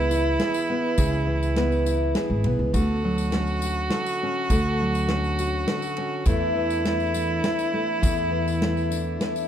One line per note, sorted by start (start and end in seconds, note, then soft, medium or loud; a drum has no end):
0.00 0.35 C#2 loud
0.00 1.25 E3 medium
0.00 0.68 B3 medium
0.00 0.10 E4 medium
0.00 2.45 E4 loud
0.00 0.39 G#4 medium
0.11 0.95 E4 medium
0.11 tambourine loud
0.39 0.95 G#4 medium
0.39 snare medium
0.39 ride medium
0.39 tambourine soft
0.54 tambourine medium
0.69 0.95 B3 medium
0.98 2.11 C#2 loud
0.98 1.27 C#3 medium
0.98 2.15 G#4 medium
0.98 kick loud
0.98 ride medium
0.98 tambourine loud
1.13 tambourine soft
1.27 2.74 E3 medium
1.43 tambourine medium
1.56 2.45 B3 medium
1.56 snare medium
1.56 ride soft
1.72 tambourine soft
1.86 2.71 E4 medium
1.86 tambourine medium
2.15 2.71 G#4 medium
2.15 snare medium
2.15 ride medium
2.30 2.43 G#1 medium
2.44 2.58 B1 medium
2.44 2.71 B3 medium
2.44 ride soft
2.59 2.72 C#2 medium
2.73 3.88 D2 medium
2.73 4.47 D3 medium
2.73 6.28 F#4 loud
2.73 3.93 A4 medium
2.73 kick medium
2.73 ride medium
2.73 tambourine medium
3.04 4.47 F#3 medium
3.18 tambourine medium
3.32 4.21 C#4 medium
3.32 snare medium
3.32 ride medium
3.47 tambourine soft
3.62 4.47 F#4 medium
3.62 tambourine medium
3.90 4.51 A4 medium
3.90 snare medium
3.90 ride soft
3.90 tambourine soft
4.06 tambourine medium
4.23 4.48 C#4 medium
4.50 5.64 D2 medium
4.50 6.23 D3 medium
4.50 5.69 A4 medium
4.50 kick loud
4.50 ride medium
4.50 tambourine medium
4.80 6.23 F#3 medium
4.95 tambourine medium
5.08 5.97 C#4 medium
5.08 snare medium
5.08 ride medium
5.24 tambourine soft
5.39 6.23 F#4 medium
5.39 tambourine medium
5.68 6.29 A4 medium
5.68 snare medium
5.68 ride medium
5.68 tambourine soft
5.82 tambourine medium
5.97 6.23 C#4 medium
5.97 ride medium
6.26 7.40 E2 loud
6.26 8.00 E2 medium
6.26 6.55 E3 medium
6.26 6.85 A3 medium
6.26 7.14 D4 medium
6.26 9.48 E4 loud
6.26 7.43 E4 medium
6.26 kick loud
6.26 ride medium
6.26 tambourine medium
6.55 8.30 E3 medium
6.70 tambourine medium
6.85 7.73 A3 medium
6.85 snare medium
6.85 ride medium
7.00 tambourine soft
7.14 7.99 D4 medium
7.14 tambourine medium
7.44 8.02 E4 medium
7.44 snare medium
7.44 ride medium
7.44 tambourine soft
7.59 tambourine medium
7.73 8.61 A3 medium
8.01 9.48 E2 medium
8.01 9.16 E2 medium
8.01 9.20 E4 medium
8.01 kick medium
8.01 ride medium
8.01 tambourine loud
8.18 tambourine soft
8.31 9.48 E3 medium
8.48 tambourine medium
8.62 9.48 A3 medium
8.62 snare medium
8.62 ride medium
8.77 tambourine soft
8.90 9.48 D4 medium
8.90 tambourine medium
9.21 9.48 E4 medium
9.21 snare medium
9.21 ride medium
9.36 tambourine medium